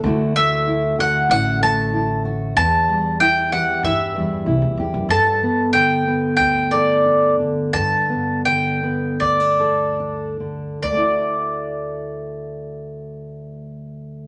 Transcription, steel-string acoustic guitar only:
\new Staff \with { instrumentName = "Steel-string acoustic guitar" } { \time 4/4 \key g \lydian \tempo 4 = 92 << { <d a e' fis'>8 a8 e'8 fis'8 e'8 a8 e'8 fis'8 | r8 g8 e'8 g'8 e'8 g8 e'8 g'8 | a'8 b4 b8 d'8 a'8 d'4 | a'8 b4 b8 b16 d'16 a'8 d'4 |
<d a e' fis'>1 | } \\ { d,4. d4 a,4. | e,4. e4 e,4. | g,4 d2~ d8 d8 | g,4 d2~ d8 d8 |
d,1 | } >> }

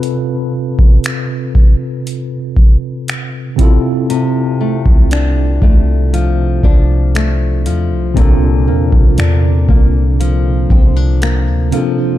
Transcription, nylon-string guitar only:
\new Staff \with { instrumentName = "Nylon-string guitar" } { \time 4/4 \key d \dorian \tempo 4 = 59 r1 | c8 a8 d'8 a8 f8 d'8 a8 f8 | bes,8 bes8 d'8 bes8 f8 c'16 d'16 bes8 f8 | }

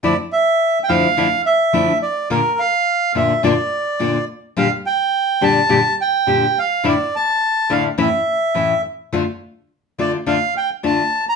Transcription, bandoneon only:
\new Staff \with { instrumentName = "Bandoneon" } { \time 4/4 \key d \minor \tempo 4 = 106 d''8 e''8.~ e''32 g''32 f''4 e''4 d''8 | bes'8 f''4 e''8 d''4. r8 | f''8 g''4 a''4 g''4 f''8 | d''8 a''4 f''8 e''4. r8 |
r4. d''8 f''8 g''8 a''8. bes''16 | }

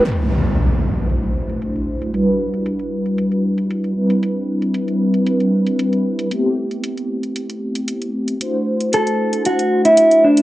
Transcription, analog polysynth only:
\new Staff \with { instrumentName = "Analog polysynth" } { \time 4/4 \key d \mixolydian \tempo 4 = 115 <a d' e' fis' c''>1 | <g d' e' fis' b'>2.~ <g d' e' fis' b'>8 <g c' d' e' b'>8~ | <g c' d' e' b'>1 | <a b c' e' g'>1 |
<a d' e' fis' c''>1 | }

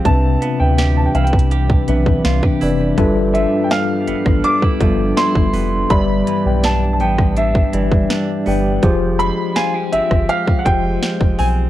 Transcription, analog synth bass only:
\new Staff \with { instrumentName = "Analog synth bass" } { \clef bass \time 4/4 \key c \major \tempo 4 = 82 c,8 r16 d,8. c,4 b,,8 c,16 r16 f,,8 | g,,8. r8. a,,16 a,,16 r8 g,,8 r16 g,,16 f,,8 | g,,8 r16 b,,8. a,,4 g,,8 r8 g,,8 | f,,8. r8. g,,16 g,,16 r8 f,,8 r16 f,,16 b,,8 | }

